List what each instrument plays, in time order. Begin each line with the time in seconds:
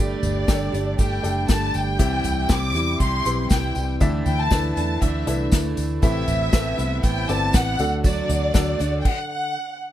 Already playing: fingered electric bass G1, grand piano G2 D4 G4 A4 G5, analog synth pad D3 G3 A3 G4, steel-string acoustic guitar G3
0.00 steel-string acoustic guitar A3 D4 G4, violin section D5
0.23 fingered electric bass G1, closed hi-hat, floor tom, tambourine
0.47 fingered electric bass G1, steel-string acoustic guitar G3 A3 D4 G4, grand piano D4 G4 A4 G5, kick, snare, closed hi-hat, tambourine
0.72 fingered electric bass G1, steel-string acoustic guitar A3 D4 G4, closed hi-hat
0.98 fingered electric bass G1, steel-string acoustic guitar G3 A3 D4 G4, violin section G5, kick, closed hi-hat, tambourine
1.23 fingered electric bass F#1, grand piano D4 G4 A4 G5, closed hi-hat, tambourine
1.48 fingered electric bass G1, steel-string acoustic guitar G3 A3 D4 G4, violin section A5, kick, snare, closed hi-hat, tambourine
1.74 fingered electric bass G1, violin section G5, closed hi-hat, tambourine
1.99 fingered electric bass C2, steel-string acoustic guitar C3 E3 G3 E4 G4, grand piano C3 C4 E4 G4 E5, analog synth pad C3 E3 G3 E4, kick, closed hi-hat, tambourine
2.24 fingered electric bass C2, closed hi-hat, floor tom, tambourine
2.49 fingered electric bass C2, steel-string acoustic guitar E3 G3 E4 G4, grand piano C4 E4 G4 G5, violin section D6, kick, snare, closed hi-hat, tambourine
2.74 fingered electric bass E2, steel-string acoustic guitar G3 E4 G4, closed hi-hat, tambourine
3.00 fingered electric bass C2, steel-string acoustic guitar C3 E3 G3 E4 G4, violin section C6, kick, closed hi-hat
3.25 fingered electric bass B1, grand piano C4 E4 G4 B4, closed hi-hat, tambourine
3.50 fingered electric bass C2, steel-string acoustic guitar E3 G3 E4 G4, violin section G5, kick, snare, closed hi-hat, tambourine
3.75 fingered electric bass C2, steel-string acoustic guitar G3 E4 G4, closed hi-hat, tambourine
4.00 fingered electric bass D2, steel-string acoustic guitar D3 E3 A3 D4 E4, analog synth pad D3 A3 E4, grand piano D3 D4 E4 A4 E5, kick, closed hi-hat, tambourine
4.26 fingered electric bass D2, violin section G5, closed hi-hat, floor tom, tambourine
4.40 violin section A5
4.50 fingered electric bass D2, steel-string acoustic guitar E3 A3 D4 E4, grand piano D4 E4 A4 B4, kick, snare, closed hi-hat, tambourine
4.76 fingered electric bass E2, steel-string acoustic guitar A3 D4 E4, violin section A5, closed hi-hat
5.01 fingered electric bass D2, steel-string acoustic guitar D3 E3 A3 D4 E4, violin section E5, kick, closed hi-hat, tambourine
5.27 fingered electric bass C2, grand piano D4 E4 A4 B4, closed hi-hat, tambourine
5.52 fingered electric bass D2, steel-string acoustic guitar E3 A3 D4 E4, kick, snare, closed hi-hat, tambourine
5.77 fingered electric bass D2, closed hi-hat, tambourine
6.02 fingered electric bass A1, steel-string acoustic guitar A2 E3 B3 C4 E4, grand piano A2 C3 A4 B4 E5, analog synth pad C3 B4, violin section E5, kick, closed hi-hat, tambourine
6.28 fingered electric bass A1, closed hi-hat, floor tom, tambourine
6.53 fingered electric bass A1, steel-string acoustic guitar E3 B3 C4 E4, grand piano C4 A4 B4 E5, kick, snare, closed hi-hat, tambourine
6.78 fingered electric bass C2, steel-string acoustic guitar B3 C4 E4, closed hi-hat, tambourine
7.03 fingered electric bass A1, steel-string acoustic guitar A2 E3 B3 C4 E4, violin section G5, kick, closed hi-hat, tambourine
7.29 fingered electric bass G1, grand piano C4 A4 B4 D5, violin section A5, closed hi-hat, tambourine
7.53 fingered electric bass A1, steel-string acoustic guitar E3 B3 C4 E4, violin section F#5, kick, snare, closed hi-hat, tambourine
7.78 fingered electric bass D2, analog synth pad D3 F#3 F#4, grand piano D3 D4 F#4 A4 F#5, steel-string acoustic guitar A3 D4 F#4, closed hi-hat, tambourine
8.04 steel-string acoustic guitar D3 F#3 A3 D4 F#4, violin section D5, kick, closed hi-hat, tambourine
8.29 fingered electric bass D2, closed hi-hat, floor tom, tambourine
8.54 fingered electric bass D2, steel-string acoustic guitar F#3 A3 D4 F#4, grand piano D4 F#4 A4 F#5, kick, snare, closed hi-hat, tambourine
8.79 fingered electric bass D2, steel-string acoustic guitar A3 D4 F#4, closed hi-hat, tambourine
9.00 violin section G5
9.05 violin section F#5, kick, crash
9.32 violin section F#5